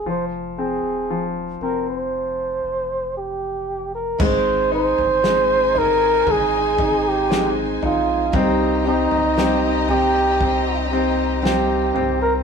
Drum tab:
CC |----------------|x---------------|----------------|
SD |----------------|----o-------o---|----o-------o---|
FT |----------------|o--o--o-o-----o-|o--o--o-o-----o-|
BD |----------------|o-------o-o-----|o-------o-------|